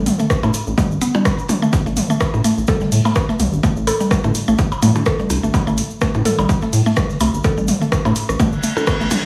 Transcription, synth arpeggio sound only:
0, 0, Header, 1, 2, 480
1, 0, Start_track
1, 0, Key_signature, 0, "minor"
1, 0, Tempo, 476190
1, 1744, Time_signature, 4, 2, 24, 8
1, 9327, End_track
2, 0, Start_track
2, 0, Title_t, "Synth arpeggio sound"
2, 0, Program_c, 0, 84
2, 197, Note_on_c, 0, 57, 78
2, 226, Note_off_c, 0, 57, 0
2, 437, Note_on_c, 0, 57, 105
2, 466, Note_off_c, 0, 57, 0
2, 783, Note_on_c, 0, 55, 83
2, 874, Note_off_c, 0, 55, 0
2, 1023, Note_on_c, 0, 59, 108
2, 1113, Note_off_c, 0, 59, 0
2, 1156, Note_on_c, 0, 55, 106
2, 1205, Note_off_c, 0, 55, 0
2, 1637, Note_on_c, 0, 57, 100
2, 1685, Note_off_c, 0, 57, 0
2, 1877, Note_on_c, 0, 57, 78
2, 1906, Note_off_c, 0, 57, 0
2, 2116, Note_on_c, 0, 57, 105
2, 2145, Note_off_c, 0, 57, 0
2, 2463, Note_on_c, 0, 57, 106
2, 2523, Note_off_c, 0, 57, 0
2, 2703, Note_on_c, 0, 69, 108
2, 2793, Note_off_c, 0, 69, 0
2, 2836, Note_on_c, 0, 55, 78
2, 2885, Note_off_c, 0, 55, 0
2, 3076, Note_on_c, 0, 57, 84
2, 3105, Note_off_c, 0, 57, 0
2, 3317, Note_on_c, 0, 57, 101
2, 3346, Note_off_c, 0, 57, 0
2, 3663, Note_on_c, 0, 57, 105
2, 3723, Note_off_c, 0, 57, 0
2, 3903, Note_on_c, 0, 69, 106
2, 3994, Note_off_c, 0, 69, 0
2, 4036, Note_on_c, 0, 55, 81
2, 4085, Note_off_c, 0, 55, 0
2, 4276, Note_on_c, 0, 57, 84
2, 4305, Note_off_c, 0, 57, 0
2, 4516, Note_on_c, 0, 57, 105
2, 4545, Note_off_c, 0, 57, 0
2, 4863, Note_on_c, 0, 57, 106
2, 4923, Note_off_c, 0, 57, 0
2, 5103, Note_on_c, 0, 69, 100
2, 5194, Note_off_c, 0, 69, 0
2, 5237, Note_on_c, 0, 55, 76
2, 5285, Note_off_c, 0, 55, 0
2, 5476, Note_on_c, 0, 57, 79
2, 5505, Note_off_c, 0, 57, 0
2, 5717, Note_on_c, 0, 57, 104
2, 5746, Note_off_c, 0, 57, 0
2, 6064, Note_on_c, 0, 57, 96
2, 6124, Note_off_c, 0, 57, 0
2, 6303, Note_on_c, 0, 69, 102
2, 6394, Note_off_c, 0, 69, 0
2, 6437, Note_on_c, 0, 55, 78
2, 6485, Note_off_c, 0, 55, 0
2, 6677, Note_on_c, 0, 57, 81
2, 6706, Note_off_c, 0, 57, 0
2, 6917, Note_on_c, 0, 57, 104
2, 6946, Note_off_c, 0, 57, 0
2, 7264, Note_on_c, 0, 57, 101
2, 7324, Note_off_c, 0, 57, 0
2, 7504, Note_on_c, 0, 69, 103
2, 7594, Note_off_c, 0, 69, 0
2, 7637, Note_on_c, 0, 55, 78
2, 7685, Note_off_c, 0, 55, 0
2, 7877, Note_on_c, 0, 57, 79
2, 7906, Note_off_c, 0, 57, 0
2, 8117, Note_on_c, 0, 57, 107
2, 8146, Note_off_c, 0, 57, 0
2, 8463, Note_on_c, 0, 57, 103
2, 8524, Note_off_c, 0, 57, 0
2, 8703, Note_on_c, 0, 57, 79
2, 8764, Note_off_c, 0, 57, 0
2, 8837, Note_on_c, 0, 69, 80
2, 8865, Note_off_c, 0, 69, 0
2, 8943, Note_on_c, 0, 59, 78
2, 9003, Note_off_c, 0, 59, 0
2, 9077, Note_on_c, 0, 57, 73
2, 9106, Note_off_c, 0, 57, 0
2, 9327, End_track
0, 0, End_of_file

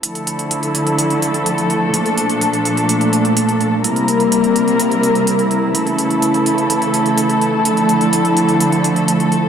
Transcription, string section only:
0, 0, Header, 1, 2, 480
1, 0, Start_track
1, 0, Key_signature, -1, "minor"
1, 0, Tempo, 476190
1, 33, Time_signature, 4, 2, 24, 8
1, 9564, End_track
2, 0, Start_track
2, 0, Title_t, "String section"
2, 0, Program_c, 0, 48
2, 34, Note_on_c, 0, 50, 75
2, 34, Note_on_c, 0, 53, 69
2, 34, Note_on_c, 0, 57, 68
2, 34, Note_on_c, 0, 69, 82
2, 35, Note_on_c, 0, 64, 69
2, 1934, Note_off_c, 0, 50, 0
2, 1935, Note_off_c, 0, 64, 0
2, 1954, Note_on_c, 0, 46, 73
2, 1954, Note_on_c, 0, 62, 68
2, 3835, Note_off_c, 0, 53, 0
2, 3835, Note_off_c, 0, 57, 0
2, 3835, Note_off_c, 0, 69, 0
2, 3855, Note_off_c, 0, 46, 0
2, 3855, Note_off_c, 0, 62, 0
2, 3874, Note_on_c, 0, 48, 70
2, 3874, Note_on_c, 0, 55, 71
2, 3874, Note_on_c, 0, 58, 69
2, 3874, Note_on_c, 0, 64, 70
2, 3874, Note_on_c, 0, 70, 86
2, 5774, Note_off_c, 0, 70, 0
2, 5775, Note_off_c, 0, 48, 0
2, 5775, Note_off_c, 0, 55, 0
2, 5775, Note_off_c, 0, 58, 0
2, 5794, Note_on_c, 0, 49, 75
2, 5794, Note_on_c, 0, 52, 69
2, 5794, Note_on_c, 0, 57, 66
2, 5795, Note_on_c, 0, 69, 83
2, 7695, Note_off_c, 0, 49, 0
2, 7695, Note_off_c, 0, 52, 0
2, 7715, Note_on_c, 0, 50, 77
2, 7716, Note_on_c, 0, 53, 67
2, 9564, Note_off_c, 0, 50, 0
2, 9564, Note_off_c, 0, 53, 0
2, 9564, Note_off_c, 0, 57, 0
2, 9564, Note_off_c, 0, 64, 0
2, 9564, Note_off_c, 0, 69, 0
2, 9564, End_track
0, 0, End_of_file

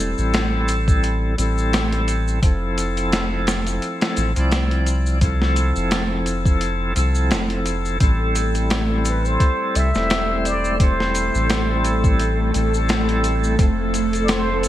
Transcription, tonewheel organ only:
0, 0, Header, 1, 2, 480
1, 0, Start_track
1, 0, Key_signature, 0, "minor"
1, 0, Tempo, 697674
1, 1671, Time_signature, 4, 2, 24, 8
1, 10101, End_track
2, 0, Start_track
2, 0, Title_t, "Tonewheel organ"
2, 0, Program_c, 0, 16
2, 0, Note_on_c, 0, 55, 88
2, 0, Note_on_c, 0, 60, 77
2, 0, Note_on_c, 0, 64, 72
2, 0, Note_on_c, 0, 69, 93
2, 922, Note_off_c, 0, 55, 0
2, 927, Note_off_c, 0, 60, 0
2, 931, Note_off_c, 0, 64, 0
2, 936, Note_off_c, 0, 69, 0
2, 947, Note_on_c, 0, 55, 79
2, 956, Note_on_c, 0, 60, 66
2, 966, Note_on_c, 0, 64, 72
2, 974, Note_on_c, 0, 69, 88
2, 1643, Note_off_c, 0, 55, 0
2, 1648, Note_off_c, 0, 60, 0
2, 1653, Note_off_c, 0, 64, 0
2, 1657, Note_off_c, 0, 69, 0
2, 1665, Note_on_c, 0, 53, 73
2, 1673, Note_on_c, 0, 60, 68
2, 1681, Note_on_c, 0, 64, 71
2, 1692, Note_on_c, 0, 69, 83
2, 2969, Note_off_c, 0, 53, 0
2, 2973, Note_off_c, 0, 60, 0
2, 2978, Note_off_c, 0, 64, 0
2, 2983, Note_off_c, 0, 69, 0
2, 2999, Note_on_c, 0, 53, 77
2, 3008, Note_on_c, 0, 60, 67
2, 3016, Note_on_c, 0, 64, 69
2, 3027, Note_on_c, 0, 74, 85
2, 3562, Note_off_c, 0, 53, 0
2, 3567, Note_off_c, 0, 60, 0
2, 3571, Note_off_c, 0, 64, 0
2, 3576, Note_off_c, 0, 74, 0
2, 3584, Note_on_c, 0, 53, 84
2, 3592, Note_on_c, 0, 60, 76
2, 3603, Note_on_c, 0, 64, 74
2, 3612, Note_on_c, 0, 69, 90
2, 4762, Note_off_c, 0, 53, 0
2, 4766, Note_off_c, 0, 60, 0
2, 4771, Note_off_c, 0, 64, 0
2, 4776, Note_off_c, 0, 69, 0
2, 4783, Note_on_c, 0, 53, 80
2, 4792, Note_on_c, 0, 60, 73
2, 4800, Note_on_c, 0, 64, 75
2, 4809, Note_on_c, 0, 69, 84
2, 5481, Note_off_c, 0, 53, 0
2, 5486, Note_off_c, 0, 60, 0
2, 5490, Note_off_c, 0, 64, 0
2, 5495, Note_off_c, 0, 69, 0
2, 5504, Note_on_c, 0, 55, 72
2, 5512, Note_on_c, 0, 60, 69
2, 5522, Note_on_c, 0, 64, 68
2, 5530, Note_on_c, 0, 69, 87
2, 6809, Note_off_c, 0, 55, 0
2, 6813, Note_off_c, 0, 60, 0
2, 6818, Note_off_c, 0, 64, 0
2, 6822, Note_off_c, 0, 69, 0
2, 6839, Note_on_c, 0, 55, 74
2, 6848, Note_on_c, 0, 60, 67
2, 6858, Note_on_c, 0, 64, 66
2, 6866, Note_on_c, 0, 72, 80
2, 7403, Note_off_c, 0, 55, 0
2, 7407, Note_off_c, 0, 60, 0
2, 7412, Note_off_c, 0, 64, 0
2, 7416, Note_off_c, 0, 72, 0
2, 7424, Note_on_c, 0, 55, 84
2, 7434, Note_on_c, 0, 60, 80
2, 7444, Note_on_c, 0, 64, 76
2, 7453, Note_on_c, 0, 69, 96
2, 8602, Note_off_c, 0, 55, 0
2, 8607, Note_off_c, 0, 60, 0
2, 8612, Note_off_c, 0, 64, 0
2, 8616, Note_off_c, 0, 69, 0
2, 8622, Note_on_c, 0, 55, 81
2, 8632, Note_on_c, 0, 60, 78
2, 8641, Note_on_c, 0, 64, 73
2, 8651, Note_on_c, 0, 69, 92
2, 9321, Note_off_c, 0, 55, 0
2, 9326, Note_off_c, 0, 60, 0
2, 9330, Note_off_c, 0, 64, 0
2, 9336, Note_off_c, 0, 69, 0
2, 9344, Note_on_c, 0, 53, 80
2, 9354, Note_on_c, 0, 60, 71
2, 9363, Note_on_c, 0, 64, 72
2, 9372, Note_on_c, 0, 69, 84
2, 10101, Note_off_c, 0, 53, 0
2, 10101, Note_off_c, 0, 60, 0
2, 10101, Note_off_c, 0, 64, 0
2, 10101, Note_off_c, 0, 69, 0
2, 10101, End_track
0, 0, End_of_file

